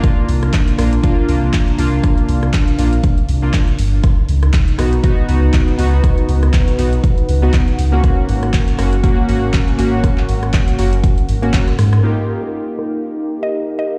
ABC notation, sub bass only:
X:1
M:4/4
L:1/8
Q:"Swing 16ths" 1/4=120
K:Dblyd
V:1 name="Sub bass" clef=bass
z C,, z B,,, z C,, z C,, | z C,, z B,,, z C,, z G,,, | z D,, z _C,, z D,, z D,, | z D,, z _C,, z D,, z D,, |
z A,,, z _G,,, z A,,, z A,,, | z A,,, z _G,,, z A,,, z A,, | z8 |]